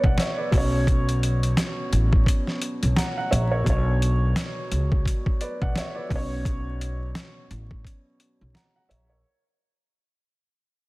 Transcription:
Already playing: upright piano B2 F#3 D4 B4 D5
0.04 upright bass B1, upright piano D5 F#5, kick
0.18 upright piano C#5 E5, snare, closed hi-hat
0.37 upright piano B4 D5
0.51 upright bass B1, upright piano B2 F#3, kick, open hi-hat
0.55 upright piano C#4 C#5
0.87 kick, closed hi-hat
1.09 closed hi-hat
1.23 closed hi-hat
1.43 closed hi-hat
1.57 snare, closed hi-hat
1.92 upright bass A1, closed hi-hat
2.13 kick
2.26 kick, closed hi-hat
2.47 snare
2.62 closed hi-hat
2.83 upright bass B1, closed hi-hat
2.96 upright piano F#5 A#5, snare, closed hi-hat
3.18 upright piano F#5
3.31 upright bass A#1, upright piano C#5 E5, closed hi-hat
3.51 upright piano A#4 C#5
3.63 upright bass B1, upright piano B2 F#3, kick, closed hi-hat
3.68 upright piano D4 C#5
4.02 closed hi-hat
4.36 snare, closed hi-hat
4.72 upright bass C#2, closed hi-hat
4.92 kick
5.05 kick, closed hi-hat
5.26 kick
5.41 upright piano B4 D5, closed hi-hat
5.62 upright bass B1, upright piano D5 F#5, kick
5.76 upright piano C#5 E5, snare, closed hi-hat
5.95 upright piano B4 D5
6.09 upright bass B1, upright piano B2 F#3, kick, open hi-hat
6.13 upright piano C#4 C#5
6.45 kick, closed hi-hat
6.81 closed hi-hat
7.15 snare, closed hi-hat
7.51 upright bass A1, closed hi-hat
7.71 kick
7.85 kick, closed hi-hat
8.20 closed hi-hat
8.41 upright bass B1
8.54 upright piano F#5 A#5, snare, closed hi-hat
8.76 upright piano F#5
8.89 upright bass A#1, upright piano C#5 E5, closed hi-hat
9.10 upright piano A#4 C#5

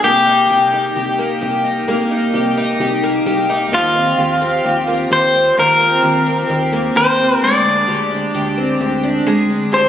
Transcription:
Already playing: twelve-string acoustic guitar F3 D4 G4
0.03 analog synth bass C2, twelve-string acoustic guitar A#3, clean electric guitar G4
0.26 twelve-string acoustic guitar D#4
0.49 analog synth bass C2, twelve-string acoustic guitar G4
0.72 twelve-string acoustic guitar D#4
0.96 analog synth bass C2, twelve-string acoustic guitar G4
1.18 twelve-string acoustic guitar A#3
1.41 analog synth bass C2, twelve-string acoustic guitar G4
1.64 twelve-string acoustic guitar D#4
1.88 analog synth bass C2, twelve-string acoustic guitar A#3
2.11 twelve-string acoustic guitar D#4
2.34 analog synth bass C2, twelve-string acoustic guitar G4
2.57 twelve-string acoustic guitar D#4
2.79 analog synth bass C2, twelve-string acoustic guitar G4
3.03 twelve-string acoustic guitar A#3
3.26 analog synth bass C2, twelve-string acoustic guitar G4
3.50 twelve-string acoustic guitar D#4
3.72 analog synth bass D#2, twelve-string acoustic guitar F3, clean electric guitar F4
3.95 twelve-string acoustic guitar C4
4.18 analog synth bass D#2, twelve-string acoustic guitar G4
4.42 twelve-string acoustic guitar C4
4.65 analog synth bass D#2, twelve-string acoustic guitar G4
4.87 twelve-string acoustic guitar A#3
5.11 analog synth bass D#2, twelve-string acoustic guitar G4, clean electric guitar C5
5.34 twelve-string acoustic guitar C4
5.57 analog synth bass D#2, twelve-string acoustic guitar F3, clean electric guitar A#4
5.80 twelve-string acoustic guitar C4
6.03 analog synth bass D#2, twelve-string acoustic guitar G4
6.26 twelve-string acoustic guitar C4
6.49 analog synth bass D#2, twelve-string acoustic guitar G4
6.72 twelve-string acoustic guitar A#3
6.95 analog synth bass D#2, twelve-string acoustic guitar G4, clean electric guitar C5
7.19 twelve-string acoustic guitar C4
7.42 analog synth bass D2, twelve-string acoustic guitar G#3, clean electric guitar D5
7.65 twelve-string acoustic guitar D4
7.88 analog synth bass D2, twelve-string acoustic guitar G4
8.11 twelve-string acoustic guitar D4
8.34 analog synth bass D2, twelve-string acoustic guitar G4
8.57 twelve-string acoustic guitar C4
8.80 analog synth bass D2, twelve-string acoustic guitar G4
9.03 twelve-string acoustic guitar D4
9.26 analog synth bass D2, twelve-string acoustic guitar G#3
9.50 twelve-string acoustic guitar D4
9.72 analog synth bass D2, twelve-string acoustic guitar G4, clean electric guitar C5

